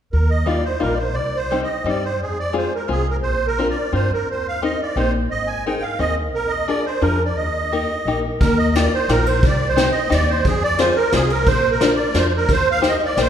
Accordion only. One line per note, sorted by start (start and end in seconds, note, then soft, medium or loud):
0.12 0.30 A#4 medium
0.30 0.47 D#5 medium
0.46 0.64 D5 medium
0.65 0.82 C5 medium
0.81 0.95 A#4 medium
0.94 1.15 C5 medium
0.94 0.98 D5 soft
1.14 1.38 D5 medium
1.36 1.61 C5 medium
1.64 1.86 D#5 medium
1.88 2.04 D5 medium
2.04 2.21 C5 medium
2.22 2.38 G#4 medium
2.39 2.55 D5 medium
2.58 2.73 C5 medium
2.75 2.89 A#4 medium
2.91 3.07 G#4 medium
3.10 3.17 A#4 medium
3.23 3.46 C5 medium
3.47 3.68 A#4 medium
3.69 3.93 D5 medium
3.94 4.11 C5 medium
4.13 4.29 A#4 medium
4.31 4.47 C5 medium
4.48 4.64 F5 medium
4.64 4.81 D#5 medium
4.82 4.98 D5 medium
4.96 5.12 C5 medium
5.31 5.48 D#5 medium
5.47 5.65 G#5 medium
5.67 5.84 G5 medium
5.82 5.99 F5 medium
5.99 6.15 D#5 medium
6.34 6.52 A#4 medium
6.48 6.67 D#5 medium
6.67 6.85 D5 medium
6.86 7.03 C5 medium
7.01 7.23 A#4 medium
7.25 7.37 D5 soft
7.37 8.20 D#5 medium
8.40 8.58 A#4 medium
8.58 8.75 D#5 medium
8.75 8.93 D5 medium
8.95 9.11 C5 medium
9.11 9.28 A#4 medium
9.28 9.44 C5 medium
9.47 9.68 D5 medium
9.68 9.90 C5 medium
9.91 10.13 D#5 medium
10.14 10.30 D5 medium
10.30 10.46 C5 medium
10.47 10.63 G#4 medium
10.64 10.80 D5 loud
10.81 10.89 C5 medium
10.90 10.95 C5 soft
10.96 11.13 A#4 medium
11.15 11.32 G#4 medium
11.31 11.48 A#4 medium
11.47 11.70 C5 medium
11.71 11.94 A#4 medium
11.95 12.17 D5 medium
12.18 12.27 C5 medium
12.28 12.32 C5 medium
12.37 12.52 A#4 medium
12.53 12.69 C5 medium
12.71 12.86 F5 medium
12.88 12.97 D#5 medium
12.98 13.02 D#5 medium
13.05 13.20 D5 medium
13.22 13.29 C5 medium